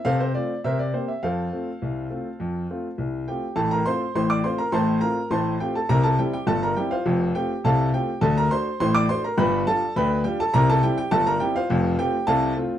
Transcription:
<<
  \new Staff \with { instrumentName = "Grand piano" } { \time 2/4 \key f \major \tempo 4 = 103 <a' c'' f''>16 c''16 d''8 <bes' c'' e''>16 d''16 c''16 e''16 | <a' c'' f''>2~ | <a' c'' f''>4 r8 <g' g''>8 | <a' a''>16 <bes' bes''>16 <c'' c'''>8 <c'' c'''>16 <d'' d'''>16 <c'' c'''>16 <bes' bes''>16 |
<c'' a'' c'''>8 <bes' bes''>8 <c'' a'' c'''>8 <g' g''>16 <a' a''>16 | <bes' bes''>16 <a' a''>16 <g' g''>16 <g' g''>16 <a' a''>16 <bes' bes''>16 <g' g''>16 <f' c'' f''>16~ | <f' c'' f''>8 <g' g''>8 <a' f'' a''>8 <g' g''>8 | <a' a''>16 <bes' bes''>16 <c'' c'''>8 <c'' c'''>16 <d'' d'''>16 <c'' c'''>16 <bes' bes''>16 |
<b' g'' b''>8 <a' a''>8 <b' g'' b''>8 <g' g''>16 <a' a''>16 | <bes' bes''>16 <a' a''>16 <g' g''>16 <g' g''>16 <a' a''>16 <bes' bes''>16 <g' g''>16 <f' c'' f''>16~ | <f' c'' f''>8 <g' g''>8 <a' f'' a''>8 r8 | }
  \new Staff \with { instrumentName = "Grand piano" } { \time 2/4 \key f \major c8 <a c' f'>8 c8 <bes c' g'>8 | f,8 <a c' f'>8 c,8 <a c' f'>8 | f,8 <a c' f'>8 c,8 <a c' f'>8 | <a,, a,>8 <a c' f'>8 <a,, a,>8 <a c' f'>8 |
<a,, a,>8 <a c' f'>8 <a,, a,>8 <a c' f'>8 | <c, c>8 <g c' e'>8 <g,, g,>8 <g c' e'>8 | <f,, f,>8 <a c' f'>8 <c, c>8 <a c' f'>8 | <d, d>8 <a d' fis'>8 <a,, a,>8 <a d' fis'>8 |
<g,, g,>8 <g d' f'>8 <d, d>8 <g d' f'>8 | <c, c>8 <g c' e'>8 <g,, g,>8 <g c' e'>8 | <f,, f,>8 <a c' f'>8 <c, c>8 <a c' f'>8 | }
>>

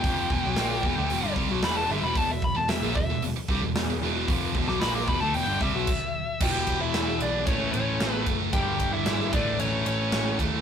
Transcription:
<<
  \new Staff \with { instrumentName = "Lead electric guitar" } { \time 4/4 \key e \dorian \tempo 4 = 113 g''2~ g''8 r8 b''16 a''16 e''16 b''16 | a''16 e''16 b''16 a''16 e''8 e''8 r2 | r8. d'''16 b''16 d'''16 b''16 a''16 g''8 e''4. | g''8. e''8. d''8 cis''8 cis''4 r8 |
g''8. e''8. d''8 cis''8 cis''4 r8 | }
  \new Staff \with { instrumentName = "Lead electric guitar" } { \time 4/4 \key e \dorian r1 | r1 | r1 | g'8. e'8. d'8 cis'8 cis'4 r8 |
g'8. e'8. d'8 cis'8 cis'4 r8 | }
  \new Staff \with { instrumentName = "Distorted electric guitar" } { \clef bass \time 4/4 \key e \dorian <f, c f>8 <e, b,>16 <b, fis>16 <ais, f ais>8 <e, b,>16 <d a>16 <e, b,>16 <g, d>16 <c g>16 <b, fis>16 <e, b, e>8 <g, d>16 <e, b,>16 | <e, b,>16 <e, b,>8 <e, b,>16 <e, b,>16 <ais, f>16 <e, b,>16 <e, b,>16 <e, b,>16 r16 <c g>16 <e, b,>16 <e, b,>16 <e, b,>16 <e, b, e>8 | <f, c f>8 <e, b,>16 <b, fis>16 <ais, f ais>8 <e, b,>16 <d a>16 <e, b,>16 <g, d>16 <c g>16 <b, fis>16 r4 | <e, b, e>2 <a, e a>2 |
<g, d g>4. <a, e a>2 <a, e a>8 | }
  \new Staff \with { instrumentName = "Overdriven electric guitar" } { \clef bass \time 4/4 \key e \dorian <f, c f>8 <e, b,>16 <b, fis>16 <ais, f ais>8 <e, b,>16 <d a>16 <e, b,>16 <g, d>16 <c g>16 <b, fis>16 <e, b, e>8 <g, d>16 <e, b,>16 | <e, b,>16 <e, b,>8 <e, b,>16 <e, b,>16 <ais, f>16 <e, b,>16 <e, b,>16 <e, b,>16 r16 <c g>16 <e, b,>16 <e, b,>16 <e, b,>16 <e, b, e>8 | <f, c f>8 <e, b,>16 <b, fis>16 <ais, f ais>8 <e, b,>16 <d a>16 <e, b,>16 <g, d>16 <c g>16 <b, fis>16 r4 | <e, b, e>2 <a, e a>2 |
<g, d g>4. <a, e a>2~ <a, e a>8 | }
  \new Staff \with { instrumentName = "Picked electric bass" } { \clef bass \time 4/4 \key e \dorian f,,8 e,,16 b,,16 ais,,8 e,,16 d,16 e,,16 g,,16 c,16 b,,16 e,,8 g,,16 e,,16 | e,,16 e,,8 e,,16 e,,16 ais,,16 e,,16 e,,16 e,,16 r16 c,16 e,,16 e,,16 e,,16 e,,8 | f,,8 e,,16 b,,16 ais,,8 e,,16 d,16 e,,16 g,,16 c,16 b,,16 r4 | e,,8 e,,8 e,,8 b,,8 a,,8 a,,8 a,,8 fis,,8 |
g,,8 g,,8 gis,,8 a,,8 a,,8 a,,8 a,,8 dis,8 | }
  \new DrumStaff \with { instrumentName = "Drums" } \drummode { \time 4/4 <hho bd>8 bd8 <hho sn>8 bd8 hho8 bd8 <hho sn>4 | <hho bd>8 bd8 <hho sn>8 bd8 hho8 <bd sn>8 <hho sn>4 | <hho bd>8 bd16 sn16 <hho sn>8 bd8 hho8 <bd sn>8 <cymc bd>4 | <cymc bd>8 <bd cymr>8 <cymr sn>16 sn16 cymr8 <bd cymr>8 cymr8 <cymr sn>8 <bd cymr>8 |
<bd cymr>8 <bd cymr>8 <cymr sn>16 sn16 <bd cymr>8 cymr8 cymr8 <cymr sn>8 <bd cymr>8 | }
>>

